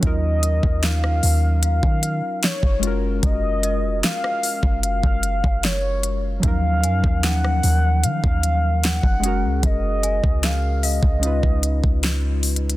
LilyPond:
<<
  \new Staff \with { instrumentName = "Celesta" } { \time 4/4 \key ees \minor \tempo 4 = 75 r2 f''2 | r8 ees''2.~ ees''8 | r8 aes''2.~ aes''8 | r8 aes''4 f''4 r4. | }
  \new Staff \with { instrumentName = "Soft synth lead" } { \time 4/4 \key ees \minor ees''4 f''4 f''4 des''8. r16 | ees''4 f''4 f''4 des''8. r16 | f''4 ges''4 f''4 ges''4 | ees''4 f''8 ees''2 r8 | }
  \new Staff \with { instrumentName = "Synth keys" } { \time 4/4 \key ees \minor <ges des' ees' f' bes'>2.~ <ges des' ees' f' bes'>8 <aes des' f' ges' bes'>8~ | <aes des' f' ges' bes'>2.~ <aes des' f' ges' bes'>8 r8 | <f ges des' ees' bes'>2.~ <f ges des' ees' bes'>8 <aes des' ges' aes' bes'>8~ | <aes des' ges' aes' bes'>2 <aes des' ees' f' ces''>2 | }
  \new Staff \with { instrumentName = "808-style bass" } { \clef bass \time 4/4 \key ees \minor ees,8. ees,8. ees,8. ees8 r8 ges,,8. | ges,,8. f,,16 r8. ges,,8 ges,,8 ges,,4~ ges,,16 | ees,8 ges,16 ees,8. ees,8 ees16 ees,4 ges,,8 des,16 | ges,,8. des,4 des,8 des,8 des,4~ des,16 | }
  \new DrumStaff \with { instrumentName = "Drums" } \drummode { \time 4/4 <hh bd>8 hh16 bd16 <hh sn>16 ss16 hho8 hh16 bd16 hh8 <hh sn>16 bd16 hh8 | <hh bd>8 hh8 <hh sn>16 ss16 hho16 bd16 hh16 bd16 hh16 bd16 <hh sn>8 hh8 | <hh bd>8 hh16 bd16 <hh sn>16 ss16 hho8 hh16 bd16 hh8 <hh sn>16 bd16 hh8 | <hh bd>8 hh16 bd16 <hh sn>8 hho16 bd16 hh16 bd16 hh16 bd16 \tuplet 3/2 { <hh sn>16 r16 r16 <hh hho>16 hh16 hh16 } | }
>>